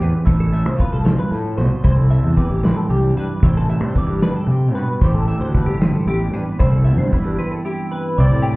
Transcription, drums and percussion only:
0.00 closed hi-hat medium
0.26 kick loud
0.26 closed hi-hat medium
0.53 closed hi-hat medium
0.79 kick medium
0.79 closed hi-hat medium
1.06 snare loud
1.06 closed hi-hat medium
1.33 closed hi-hat medium
1.59 closed hi-hat medium
1.84 kick loud
1.84 closed hi-hat medium
2.11 closed hi-hat medium
2.37 kick medium
2.37 closed hi-hat medium
2.65 snare loud
2.65 closed hi-hat medium
2.91 closed hi-hat medium
3.17 closed hi-hat medium
3.43 kick loud
3.43 closed hi-hat medium
3.69 closed hi-hat medium
3.96 kick medium
3.96 closed hi-hat medium
4.22 snare loud
4.22 closed hi-hat medium
4.49 closed hi-hat soft
4.76 closed hi-hat medium
5.02 kick loud
5.02 closed hi-hat medium
5.28 closed hi-hat medium
5.55 kick medium
5.55 closed hi-hat medium
5.81 snare loud
5.81 closed hi-hat medium
6.08 closed hi-hat medium
6.34 closed hi-hat medium
6.60 kick loud
6.60 closed hi-hat medium
6.87 closed hi-hat medium
7.13 kick medium
7.13 closed hi-hat soft

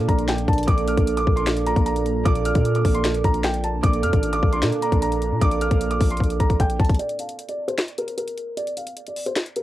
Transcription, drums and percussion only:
0.09 kick medium
0.09 closed hi-hat medium
0.18 closed hi-hat medium
0.28 finger snap medium
0.28 snare loud
0.28 closed hi-hat medium
0.38 closed hi-hat medium
0.48 kick loud
0.48 closed hi-hat soft
0.53 closed hi-hat soft
0.58 closed hi-hat medium
0.63 closed hi-hat medium
0.68 kick loud
0.68 closed hi-hat medium
0.78 closed hi-hat medium
0.88 closed hi-hat medium
0.97 kick loud
0.97 closed hi-hat medium
1.07 closed hi-hat medium
1.17 closed hi-hat medium
1.27 kick medium
1.37 closed hi-hat medium
1.47 finger snap loud
1.47 snare loud
1.47 closed hi-hat medium
1.57 closed hi-hat medium
1.67 closed hi-hat medium
1.76 kick medium
1.76 closed hi-hat medium
1.86 closed hi-hat medium
1.96 closed hi-hat medium
2.06 closed hi-hat medium
2.26 kick loud
2.26 closed hi-hat medium
2.36 closed hi-hat medium
2.45 closed hi-hat medium
2.55 kick loud
2.55 closed hi-hat medium
2.65 closed hi-hat medium
2.75 closed hi-hat medium
2.85 kick medium
2.85 open hi-hat loud
2.95 closed hi-hat medium
3.05 finger snap medium
3.05 snare loud
3.05 closed hi-hat medium
3.14 closed hi-hat medium
3.24 kick medium
3.24 closed hi-hat medium
3.34 closed hi-hat medium
3.44 finger snap medium
3.44 snare loud
3.44 closed hi-hat medium
3.54 closed hi-hat medium
3.64 closed hi-hat medium
3.83 kick loud
3.83 closed hi-hat medium
3.93 closed hi-hat medium
4.03 closed hi-hat medium
4.13 kick loud
4.13 closed hi-hat medium
4.23 closed hi-hat medium
4.33 closed hi-hat medium
4.43 kick medium
4.53 closed hi-hat medium
4.62 finger snap medium
4.62 snare loud
4.62 closed hi-hat medium
4.72 closed hi-hat medium
4.82 closed hi-hat medium
4.92 kick loud
4.92 closed hi-hat medium
5.02 closed hi-hat medium
5.12 closed hi-hat medium
5.22 closed hi-hat medium
5.41 kick loud
5.41 closed hi-hat medium
5.51 closed hi-hat medium
5.61 closed hi-hat medium
5.71 kick loud
5.71 closed hi-hat medium
5.81 closed hi-hat medium
5.91 closed hi-hat medium
6.01 kick loud
6.01 open hi-hat loud
6.10 closed hi-hat soft
6.17 kick medium
6.17 closed hi-hat soft
6.24 closed hi-hat medium
6.30 closed hi-hat medium
6.40 kick medium
6.40 closed hi-hat medium
6.50 kick medium
6.50 closed hi-hat medium
6.60 kick medium
6.60 closed hi-hat medium
6.70 closed hi-hat medium
6.80 kick loud
6.80 closed hi-hat soft
6.85 closed hi-hat soft
6.89 kick loud
6.89 closed hi-hat medium
6.94 closed hi-hat medium
6.99 closed hi-hat medium
7.09 closed hi-hat medium
7.19 closed hi-hat medium
7.29 closed hi-hat medium
7.39 closed hi-hat medium
7.49 closed hi-hat medium
7.68 closed hi-hat medium
7.78 finger snap medium
7.78 snare loud
7.78 closed hi-hat medium
7.88 closed hi-hat soft
7.98 closed hi-hat medium
8.08 closed hi-hat medium
8.18 closed hi-hat medium
8.28 closed hi-hat medium
8.38 closed hi-hat medium
8.57 closed hi-hat medium
8.67 closed hi-hat soft
8.77 closed hi-hat medium
8.87 closed hi-hat medium
8.97 closed hi-hat medium
9.07 closed hi-hat medium
9.16 open hi-hat loud
9.26 closed hi-hat medium
9.36 finger snap medium
9.36 snare loud
9.36 closed hi-hat medium
9.46 closed hi-hat medium
9.56 closed hi-hat medium

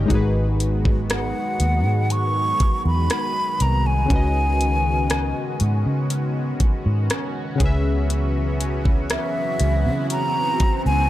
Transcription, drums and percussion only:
0.10 kick loud
0.10 closed hi-hat medium
0.60 closed hi-hat medium
0.85 kick medium
1.10 cross-stick loud
1.10 closed hi-hat medium
1.60 closed hi-hat medium
2.10 closed hi-hat medium
2.60 kick loud
2.60 closed hi-hat medium
3.10 cross-stick loud
3.10 closed hi-hat medium
3.60 closed hi-hat medium
4.10 kick loud
4.10 closed hi-hat medium
4.61 closed hi-hat medium
5.10 cross-stick loud
5.10 closed hi-hat medium
5.60 closed hi-hat medium
6.10 closed hi-hat medium
6.60 kick medium
6.60 closed hi-hat medium
7.10 cross-stick loud
7.10 closed hi-hat medium
7.60 kick loud
7.60 closed hi-hat medium
8.10 closed hi-hat medium
8.61 closed hi-hat medium
8.85 kick medium
9.10 cross-stick loud
9.10 closed hi-hat medium
9.60 closed hi-hat medium
10.10 closed hi-hat medium
10.60 kick loud
10.60 closed hi-hat medium

